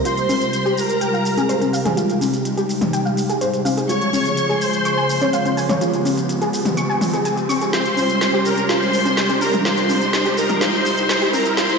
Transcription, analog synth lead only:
0.05 0.79 C5 loud
0.77 1.64 A#4 loud
3.89 4.63 C#5 loud
4.61 5.48 C5 loud
7.73 8.45 C5 loud
8.45 8.67 A#4 medium
8.69 9.41 C5 loud
9.41 9.63 A#4 medium
9.65 10.37 C5 loud
10.37 10.59 A#4 loud
10.61 11.33 C5 loud
11.33 11.55 A#4 medium
11.57 11.79 C5 loud

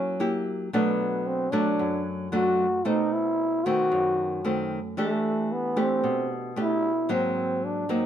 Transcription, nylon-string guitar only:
0.00 0.70 F#3 medium
0.00 0.15 A#3 medium
0.00 0.15 E4 medium
0.20 0.68 A#3 medium
0.20 0.68 E4 medium
0.20 0.68 G4 medium
0.73 1.76 B2 medium
0.73 1.48 F#3 medium
0.73 1.48 A3 medium
0.73 1.48 D4 medium
1.52 2.27 F#3 medium
1.52 2.28 A3 medium
1.52 2.28 D4 medium
1.79 2.82 F#2 medium
2.32 2.66 F#3 medium
2.32 2.66 A3 medium
2.32 2.66 D4 medium
2.85 3.88 B2 medium
2.85 3.60 A3 medium
2.85 3.60 C4 medium
3.66 4.40 D#3 medium
3.66 4.40 A3 medium
3.66 4.41 C4 medium
3.92 4.95 F#2 medium
4.44 4.78 D#3 medium
4.44 4.78 A3 medium
4.44 4.79 C4 medium
4.97 6.01 E3 medium
4.97 5.73 A3 medium
4.97 5.73 D4 medium
4.97 5.73 G4 medium
5.76 6.52 A3 medium
5.76 6.52 D4 medium
5.76 6.52 G4 medium
6.04 7.07 B2 medium
6.56 6.90 A3 medium
6.56 6.91 D4 medium
6.56 6.91 G4 medium
7.09 8.06 G#2 medium
7.09 7.85 F#3 medium
7.09 7.85 A#3 medium
7.09 7.85 C4 medium
7.89 8.06 F#3 medium
7.89 8.06 A#3 medium
7.89 8.06 C4 medium

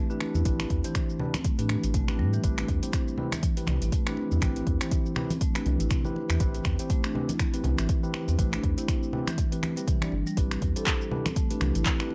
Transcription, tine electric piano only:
0.10 0.43 D4 medium
0.10 0.43 E4 medium
0.10 0.43 G4 medium
0.10 0.43 B4 loud
0.45 0.81 D4 medium
0.45 0.81 E4 medium
0.45 0.81 G4 medium
0.45 0.81 B4 loud
0.84 1.17 D4 medium
0.84 1.17 E4 medium
0.84 1.17 G4 medium
0.84 1.17 C5 medium
1.20 1.35 D4 medium
1.20 1.35 E4 medium
1.20 1.35 G4 medium
1.20 1.35 B4 loud
1.59 2.05 D4 medium
1.59 2.05 E4 medium
1.59 2.05 G4 medium
1.59 2.05 B4 medium
2.08 2.41 D4 medium
2.08 2.41 E4 medium
2.08 2.41 G4 medium
2.08 2.41 B4 loud
2.44 2.79 C4 medium
2.44 2.79 E4 medium
2.44 2.79 G4 medium
2.44 2.79 B4 loud
2.83 3.16 C4 medium
2.83 3.16 E4 medium
2.83 3.16 G4 medium
2.83 3.16 C5 medium
3.18 3.33 C4 medium
3.18 3.33 E4 medium
3.18 3.33 G4 medium
3.18 3.33 B4 loud
3.57 4.03 C4 medium
3.57 4.03 E4 medium
3.57 4.03 G4 medium
3.57 4.03 B4 medium
4.07 4.40 C4 medium
4.07 4.40 E4 medium
4.07 4.40 G4 medium
4.07 4.40 B4 loud
4.42 4.78 C4 loud
4.42 4.78 E4 medium
4.42 4.78 G4 medium
4.42 4.78 B4 loud
4.81 5.14 C4 medium
4.81 5.14 E4 medium
4.81 5.14 G4 medium
4.81 5.14 C5 medium
5.16 5.31 C4 medium
5.16 5.31 E4 medium
5.16 5.31 G4 medium
5.16 5.31 B4 loud
5.55 6.02 C4 medium
5.55 6.02 E4 medium
5.55 6.02 G4 medium
5.55 6.02 B4 loud
6.05 6.38 C4 loud
6.05 6.38 E4 medium
6.05 6.38 G4 medium
6.05 6.38 B4 loud
6.40 6.76 C4 loud
6.40 6.76 E4 medium
6.40 6.76 G4 medium
6.40 6.76 B4 loud
6.79 7.12 C4 medium
6.79 7.12 E4 medium
6.79 7.12 G4 medium
6.79 7.12 C5 medium
7.15 7.30 C4 medium
7.15 7.30 E4 medium
7.15 7.30 G4 medium
7.15 7.30 B4 loud
7.54 8.00 C4 medium
7.54 8.00 E4 medium
7.54 8.00 G4 medium
7.54 8.00 B4 medium
8.03 8.36 C4 loud
8.03 8.36 E4 medium
8.03 8.36 G4 medium
8.03 8.36 B4 loud
8.38 8.74 C4 medium
8.38 8.74 E4 medium
8.38 8.74 G4 medium
8.38 8.74 B4 loud
8.78 9.11 C4 medium
8.78 9.11 E4 medium
8.78 9.11 G4 medium
8.78 9.11 C5 loud
9.13 9.28 C4 medium
9.13 9.28 E4 medium
9.13 9.28 G4 medium
9.13 9.28 B4 loud
9.52 9.74 C4 medium
9.52 9.74 E4 medium
9.52 9.74 G4 medium
9.52 9.74 B4 medium
9.77 9.98 C4 medium
9.77 9.98 E4 medium
9.77 9.98 G4 medium
9.77 9.98 B4 medium
10.02 10.13 C4 medium
10.02 10.13 E4 medium
10.02 10.13 G4 medium
10.02 10.13 D5 loud
10.37 10.73 D4 medium
10.37 10.73 E4 medium
10.37 10.73 G4 medium
10.37 10.73 B4 loud
10.76 11.09 D4 medium
10.76 11.09 E4 medium
10.76 11.09 G4 medium
10.76 11.09 C5 loud
11.11 11.27 D4 medium
11.11 11.27 E4 medium
11.11 11.27 G4 medium
11.11 11.27 B4 loud
11.50 11.97 D4 medium
11.50 11.97 E4 medium
11.50 11.97 G4 medium
11.50 11.97 B4 medium
12.00 12.15 D4 loud
12.00 12.15 E4 medium
12.00 12.15 G4 medium
12.00 12.15 B4 loud

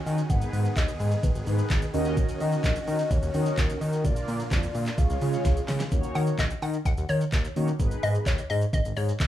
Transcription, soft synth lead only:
0.06 0.31 G#5 loud
0.30 0.53 F#5 loud
0.53 0.78 F#5 loud
0.76 1.25 D#5 loud
1.23 1.70 B4 medium
2.40 3.13 D#5 loud
3.11 3.59 C#5 loud
3.58 4.04 A#4 medium
4.05 4.48 D5 loud
4.51 5.00 D5 loud
4.98 5.69 F5 loud

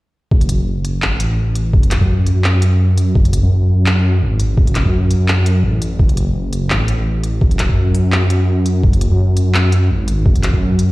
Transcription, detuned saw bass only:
0.31 1.04 F#1 medium
1.02 1.72 A1 medium
1.73 2.00 F#1 loud
2.01 3.14 F#2 medium
3.15 3.42 F#1 medium
3.43 4.23 F#2 medium
4.22 4.56 G#1 medium
4.57 4.84 F#1 loud
4.85 5.63 F#2 loud
5.64 5.98 A1 medium
5.99 6.72 F#1 loud
6.70 7.40 A1 medium
7.41 7.68 F#1 medium
7.69 8.82 F#2 medium
8.83 9.10 F#1 loud
9.11 9.92 F#2 medium
9.90 10.25 G#1 medium
10.26 10.52 F#1 medium
10.53 10.92 F#2 loud

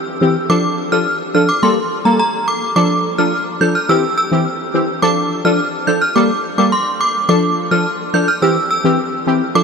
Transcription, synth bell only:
0.50 0.70 D6 loud
0.92 1.02 F6 medium
1.35 1.45 F6 medium
1.49 1.59 D6 medium
1.63 1.73 C6 medium
2.05 2.15 A#5 medium
2.19 2.29 A#5 medium
2.48 2.58 D6 medium
2.76 2.96 D6 loud
3.18 3.28 F6 medium
3.61 3.71 G6 medium
3.75 3.85 F6 medium
3.89 3.99 E6 medium
4.18 4.28 E6 medium
5.02 5.22 D6 loud
5.45 5.55 F6 medium
5.87 5.97 G6 medium
6.02 6.12 F6 medium
6.16 6.26 D6 medium
6.58 6.68 D6 medium
6.72 6.82 C6 medium
7.01 7.11 D6 medium
7.29 7.49 D6 loud
7.71 7.81 F6 medium
8.14 8.24 G6 medium
8.28 8.38 F6 medium
8.42 8.52 E6 medium
8.71 8.80 E6 medium
9.55 9.63 D6 loud

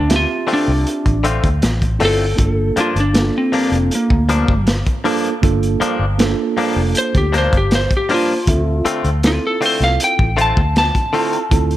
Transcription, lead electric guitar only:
0.00 0.16 D4 medium
0.16 0.50 F4 medium
0.54 1.25 D4 medium
2.05 2.77 A4 medium
2.80 2.98 F4 medium
3.00 3.35 D4 medium
3.38 3.91 C4 loud
3.95 4.67 A#3 medium
6.98 7.16 C5 loud
7.17 7.34 G4 loud
7.38 7.55 C5 medium
7.57 7.73 G4 medium
7.75 7.92 C5 medium
7.97 8.12 G4 medium
8.14 8.86 F4 medium
9.27 9.44 F4 medium
9.47 9.66 A4 loud
9.66 9.83 C5 medium
9.84 10.01 F5 medium
10.04 10.39 G5 medium
10.41 10.76 A5 medium
10.78 11.77 A5 loud

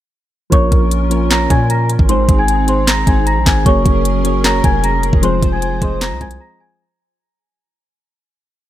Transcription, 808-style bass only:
0.52 0.71 A#1 loud
0.72 1.47 A#1 loud
1.50 1.97 A#2 loud
1.99 2.27 G#1 loud
2.29 3.04 G#1 loud
3.07 3.38 G#1 loud
3.36 3.46 A#1 loud
3.46 3.65 G#1 loud
3.66 3.85 F#1 loud
3.86 4.61 F#1 loud
4.64 5.11 F1 loud
5.13 5.41 F1 loud
5.42 5.80 F1 loud
5.82 6.13 F1 loud
6.11 6.20 C2 loud
6.21 6.40 C2 loud

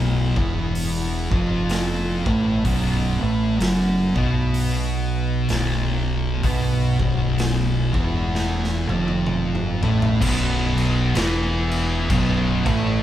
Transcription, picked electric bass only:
0.00 0.32 B0 medium
0.36 1.27 E1 loud
1.32 2.22 F1 loud
2.26 2.62 A1 loud
2.65 3.17 B0 loud
3.22 3.57 A1 loud
3.60 4.12 F#1 loud
4.16 5.45 B1 loud
5.50 6.40 B0 medium
6.44 6.96 B1 loud
7.00 7.90 B0 loud
7.94 8.84 E1 loud
8.89 9.79 F1 loud
9.83 10.18 A1 loud
10.22 11.12 B0 loud
11.15 12.06 E1 loud
12.10 12.62 B0 medium
12.66 13.03 A1 loud

